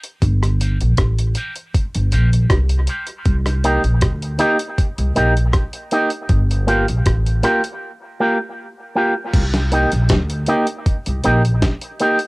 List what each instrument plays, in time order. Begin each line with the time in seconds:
0.04 closed hi-hat
0.22 upright bass G1, kick, closed hi-hat
0.43 cross-stick, closed hi-hat
0.60 clean electric guitar A#3 F4 G4, closed hi-hat
0.81 upright bass A#1, closed hi-hat
0.97 upright bass A1, kick, cross-stick, closed hi-hat
1.19 closed hi-hat
1.35 clean electric guitar A#3 F4 G4, closed hi-hat
1.56 closed hi-hat
1.75 kick, closed hi-hat
1.95 upright bass G1, closed hi-hat
2.12 upright bass A#1, clean electric guitar A#3 F4 G4, closed hi-hat
2.33 closed hi-hat
2.50 upright bass C2, kick, cross-stick, closed hi-hat
2.69 closed hi-hat
2.87 clean electric guitar A#3 F4 G4, closed hi-hat
3.07 closed hi-hat
3.25 upright bass C2, kick, closed hi-hat
3.46 cross-stick, closed hi-hat
3.64 clean electric guitar A#3 D#4 G4, closed hi-hat
3.84 upright bass A#1, closed hi-hat
4.01 upright bass D2, kick, cross-stick, closed hi-hat
4.22 closed hi-hat
4.38 clean electric guitar A#3 D#4 G4, closed hi-hat
4.59 closed hi-hat
4.78 kick, closed hi-hat
4.98 upright bass C2, closed hi-hat
5.16 upright bass A#1, clean electric guitar A#3 D#4 G4, closed hi-hat
5.37 closed hi-hat
5.53 kick, cross-stick, closed hi-hat
5.73 closed hi-hat
5.91 clean electric guitar A#3 D#4 G4, closed hi-hat
6.10 closed hi-hat
6.29 upright bass G1, kick, closed hi-hat
6.51 closed hi-hat
6.67 clean electric guitar A#3 F4 G4, closed hi-hat
6.88 upright bass A#1, closed hi-hat
7.06 upright bass A1, kick, cross-stick, closed hi-hat
7.26 closed hi-hat
7.43 clean electric guitar A#3 F4 G4, cross-stick, closed hi-hat
7.64 closed hi-hat
8.20 clean electric guitar A#3 F4 G4
8.95 clean electric guitar A#3 F4 G4
9.33 upright bass C2, kick, closed hi-hat, crash
9.54 snare, closed hi-hat
9.72 clean electric guitar A#3 D#4 G4, closed hi-hat
9.92 upright bass A#1, closed hi-hat
10.09 upright bass D2, kick, snare, closed hi-hat
10.30 closed hi-hat
10.46 clean electric guitar A#3 D#4 G4, closed hi-hat
10.67 closed hi-hat
10.86 kick, closed hi-hat
11.06 upright bass C2, closed hi-hat
11.24 upright bass A#1, clean electric guitar A#3 D#4 G4, closed hi-hat
11.45 closed hi-hat
11.62 kick, snare, closed hi-hat
11.81 closed hi-hat
12.00 clean electric guitar A#3 D#4 G4, closed hi-hat
12.19 closed hi-hat